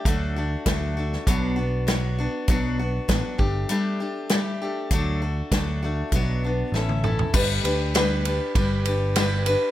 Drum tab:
CC |----------------|----------------|----------------|x---------------|
RD |----------------|----------------|----------------|--x-x-x-x-x-x-x-|
HH |x---x---x---x---|x---x---x---x---|x---x---x-------|----------------|
SD |----o--o----o---|----o-------o---|----o-------o---|----o-------o---|
T1 |----------------|----------------|-------------o--|----------------|
T2 |----------------|----------------|--------------o-|----------------|
FT |----------------|----------------|---------------o|----------------|
BD |o---o---o-------|o---o-o---------|o---o---o-------|o-------o-------|